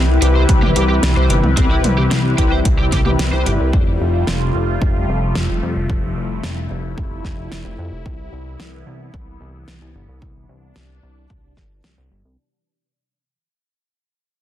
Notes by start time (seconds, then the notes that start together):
Already playing: C2 C3 E3 G3 C4 E4 G4 B4
0.22 C2 C4 E4 G4 B4, closed hi-hat
0.35 C5
0.49 C2, kick, closed hi-hat
0.62 G4, mid tom
0.76 C2 G4, closed hi-hat
0.89 G4
1.03 C2, snare, closed hi-hat
1.16 C2 C5
1.30 G1 G4, closed hi-hat
1.43 C2, mid tom
1.57 C2 C4 E4 G4 B4, kick, closed hi-hat
1.71 E4
1.84 C2, closed hi-hat, mid tom
1.98 G4
2.11 C2 C4, snare, closed hi-hat
2.38 C2 C4 E4 G4 B4, kick, closed hi-hat
2.52 C5
2.65 C2, kick, closed hi-hat
2.79 G4
2.92 C2 G4, kick, snare, closed hi-hat
3.06 C4 E4 G4 B4, mid tom
3.19 C2, snare, closed hi-hat
3.32 C2 C5
3.46 G1 G4, closed hi-hat
3.60 C2
3.73 F1 F3 A3 F4, kick
4.00 F1
4.27 F1, snare
4.55 F1
4.82 F1, kick
5.09 F1
5.35 F1, snare
5.49 F1
5.63 F2
5.76 F1
5.90 F1 E4, kick
6.17 F1
6.44 F1, snare
6.71 F1
6.98 F1, kick
7.25 F1, kick, snare
7.52 F1, snare
7.65 F1
7.79 F2
7.92 F1
8.06 C2 E3 B3, kick
8.32 C2
8.60 C2, snare
8.87 C2
9.14 C2, kick
9.41 C2
9.68 C2, snare
9.81 C2
9.95 G1
10.08 C2
10.22 C2 D4, kick
10.49 C2
10.76 C2, snare
11.03 C2
11.30 C2, kick
11.57 G1, kick, snare
11.84 C2, snare
11.98 C2
12.11 G1
12.25 C2